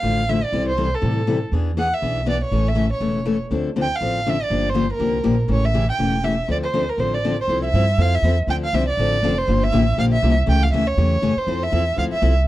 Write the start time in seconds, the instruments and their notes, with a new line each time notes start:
Already playing: violin F5
0.03 upright bass A1, steel-string acoustic guitar D3 F3 A3 E4
0.29 steel-string acoustic guitar D3 F3 A3 E4, violin E5
0.44 violin D5
0.52 upright bass C2, steel-string acoustic guitar C3 E3 G3 C4 E4 A4
0.69 violin C5
0.77 steel-string acoustic guitar C3 E3 G3 C4 E4 A4
0.95 violin A4
1.02 upright bass A2, steel-string acoustic guitar C3 E3 G3 C4 E4 A4
1.27 steel-string acoustic guitar C3 E3 G3 C4 E4 A4
1.52 upright bass E2, steel-string acoustic guitar E3 B3 D4 G#4
1.77 steel-string acoustic guitar E3 B3 D4 G#4, violin F#5
1.94 violin E5
2.02 upright bass B1, steel-string acoustic guitar E3 B3 D4 G#4
2.26 steel-string acoustic guitar E3 B3 D4 G#4, violin D5
2.44 violin C#5
2.51 upright bass A1, steel-string acoustic guitar C#3 E3 A3 C#4 A4
2.68 violin E5
2.75 steel-string acoustic guitar C#3 E3 A3 C#4 A4
2.93 violin C#5
3.00 upright bass E1, steel-string acoustic guitar C#3 E3 A3 C#4 A4
3.25 steel-string acoustic guitar C#3 E3 A3 C#4 A4
3.51 upright bass D2, steel-string acoustic guitar D3 F3 C4 D4 A4
3.76 steel-string acoustic guitar D3 F3 C4 D4 A4
3.82 violin G5
3.95 violin F5
4.01 upright bass A1, steel-string acoustic guitar D3 F3 C4 D4 A4
4.26 steel-string acoustic guitar D3 F3 C4 D4 A4, violin E5
4.43 violin D5
4.50 upright bass G1, steel-string acoustic guitar D3 F3 A#3 D4 G4
4.69 violin C5
4.74 steel-string acoustic guitar D3 F3 A#3 D4 G4
4.93 violin A#4
4.99 upright bass C2, steel-string acoustic guitar D3 F3 A#3 D4 G4
5.24 upright bass A#1, steel-string acoustic guitar D3 F3 A#3 D4 G4
5.48 upright bass A1, steel-string acoustic guitar C#3 E3 A3 C#4 G4
5.52 violin C#5
5.65 violin E5
5.74 steel-string acoustic guitar C#3 E3 A3 C#4 G4
5.89 violin G5
5.98 upright bass E1, steel-string acoustic guitar C#3 E3 A3 C#4 G4
6.23 steel-string acoustic guitar C#3 E3 A3 C#4 G4, violin E5
6.48 upright bass D2, steel-string acoustic guitar D3 F3 C4 D4 A4, violin D5
6.63 violin C5
6.73 steel-string acoustic guitar D3 F3 C4 D4 A4
6.89 violin A#4
6.98 upright bass A1, steel-string acoustic guitar D3 F3 C4 D4 A4, violin C5
7.14 violin D5
7.25 steel-string acoustic guitar D3 F3 C4 D4 A4
7.41 violin C5
7.48 upright bass C2, steel-string acoustic guitar F3 C4 E4 A4
7.65 violin E5
7.73 upright bass G2, steel-string acoustic guitar F3 C4 E4 A4
7.98 upright bass F2, steel-string acoustic guitar F3 C4 E4 A4, violin F5
8.14 violin E5
8.22 upright bass E2, steel-string acoustic guitar F3 C4 E4 A4
8.47 upright bass D2, steel-string acoustic guitar D3 F3 C4 D4 A4, violin G5
8.64 violin F5
8.73 upright bass C2, steel-string acoustic guitar D3 F3 C4 D4 A4, violin E5
8.89 violin D5
8.97 upright bass A1, steel-string acoustic guitar D3 F3 C4 D4 A4
9.23 upright bass F1, steel-string acoustic guitar D3 F3 C4 D4 A4
9.38 violin C5
9.47 upright bass G1, steel-string acoustic guitar D3 F3 A#3 D4 G4
9.64 violin E5
9.72 upright bass A1, steel-string acoustic guitar D3 F3 A#3 D4 G4
9.97 upright bass A#1, steel-string acoustic guitar D3 F3 A#3 D4 G4, violin F5
10.13 violin E5
10.22 upright bass C2, steel-string acoustic guitar D3 F3 A#3 D4 G4
10.46 upright bass C#2, steel-string acoustic guitar C#3 E3 A3 C#4 G4, violin G5
10.63 violin F5
10.72 upright bass D2, steel-string acoustic guitar C#3 E3 A3 C#4 G4, violin E5
10.87 violin C#5
10.97 upright bass E2, steel-string acoustic guitar C#3 E3 A3 C#4 G4
11.22 upright bass F#2, steel-string acoustic guitar C#3 E3 A3 C#4 G4
11.36 violin C5, muted upright bass stroke
11.47 upright bass F2, steel-string acoustic guitar F3 C4 E4 A4
11.63 violin E5
11.72 upright bass E2, steel-string acoustic guitar F3 C4 E4 A4
11.96 upright bass D2, steel-string acoustic guitar F3 C4 E4 A4, violin F5
12.12 violin E5, muted upright bass stroke
12.22 upright bass C2, steel-string acoustic guitar F3 C4 E4 A4